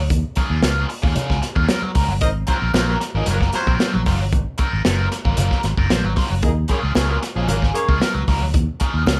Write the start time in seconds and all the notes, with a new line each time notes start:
0.10 D#2, kick, closed hi-hat
0.35 F#3 C#4 F4 G#4, kick, closed hi-hat, muted conga
0.50 D#2
0.62 C#2 F#3 C#4 F4 G#4, snare, closed hi-hat, high conga
0.89 muted overdriven electric guitar stroke, open hi-hat
1.02 D#2 F#3 C#4 F4 G#4, kick
1.15 F#3 C#4 F4 G#4, muted fingered electric bass stroke, closed hi-hat, muted conga, low conga
1.30 C#2, kick, snare
1.42 muted overdriven electric guitar stroke, snare, closed hi-hat
1.55 D#2 F#3 C#4 F4 G#4, kick
1.67 F#3 C#4 F4 A#4, snare, closed hi-hat, high conga
1.82 muted overdriven electric guitar stroke, high conga
1.95 C#2 F#3 C#4 F4 A#4, kick, snare, open hi-hat
2.08 G1, muted overdriven electric guitar stroke, high conga
2.21 G#1 C4 D#4 A#4 D#5, kick, closed hi-hat
2.47 F#3 C4 F4 A#4 C5, kick, closed hi-hat, muted conga
2.62 A#1
2.74 A#1 F#3 C4 F4 A#4 C5, snare, closed hi-hat, high conga
2.88 F#3 A#3 F4 A#4
3.00 muted overdriven electric guitar stroke, snare, closed hi-hat
3.15 G#1 F3 F#3 G#3 C4 D#4 F4 G#4 A#4
3.26 F#1 F#3 A#3 C4 F4 A#4, closed hi-hat, muted conga, low conga
3.41 kick, snare
3.53 F#3 C4 F4 C5, muted overdriven electric guitar stroke, snare, closed hi-hat, muted conga
3.67 A#1 F#3 C4 F4 A#4, kick
3.79 F#3 C4 F4 C5, snare, closed hi-hat, high conga
3.94 A#1, muted overdriven electric guitar stroke, high conga
4.06 F#1 F#3 C4 F4 C5, kick, snare, open hi-hat
4.20 G1, muted overdriven electric guitar stroke, high conga
4.32 G#1, kick, closed hi-hat
4.58 F#3 C4 F4 A#4, kick, closed hi-hat, muted conga
4.73 G#1
4.85 F#1 F#3 C4 F4 A#4, snare, closed hi-hat, high conga
5.12 muted overdriven electric guitar stroke, snare, closed hi-hat
5.25 G#1 F#3 C4 F4 A#4, kick
5.37 F#1 F#3 C4 F4 A#4, closed hi-hat, muted conga, low conga
5.51 kick, snare
5.63 G#1, muted overdriven electric guitar stroke, snare, closed hi-hat
5.77 F#1 F#3 C4 F4 A#4, kick
5.90 A#1 F#3 C4 F4 C5, snare, closed hi-hat, high conga
6.04 G#1, muted overdriven electric guitar stroke, high conga
6.16 F#3 C4 F4 C5, kick, snare, open hi-hat
6.30 F#1, muted overdriven electric guitar stroke, high conga
6.43 D#2 A#3 D#4 G#4 D#5, kick, closed hi-hat
6.68 F#3 A#3 C#4 F4 G#4 C#5, kick, closed hi-hat, muted conga
6.83 C#2
6.95 C#2 F#3 A#3 C#4 F4 G#4 C#5, snare, closed hi-hat, high conga
7.09 F#3 A#3 F4 A#4
7.22 muted overdriven electric guitar stroke, snare, closed hi-hat
7.34 A#1 F3 F#3 G#3 C#4 F4 G#4
7.47 G#1 F#3 A#3 C#4 F4 G#4 A#4, closed hi-hat, muted conga, low conga
7.62 kick, snare
7.74 A#3 C#4 G#4 C#5, muted overdriven electric guitar stroke, closed hi-hat, muted conga
7.88 C#2 F#3 C#4 F4 G#4, kick
8.00 F#3 C#4 F4 A#4, snare, closed hi-hat, high conga
8.15 C#2, muted overdriven electric guitar stroke, high conga
8.28 C#2 F#3 C#4 F4 A#4, kick, snare, open hi-hat
8.41 D2, muted overdriven electric guitar stroke, high conga
8.54 D#2, kick, closed hi-hat
8.80 F#3 C#4 F4 G#4, kick, closed hi-hat, muted conga
8.94 D#2
9.06 C#2 F#3 C#4 F4 G#4, snare, closed hi-hat, high conga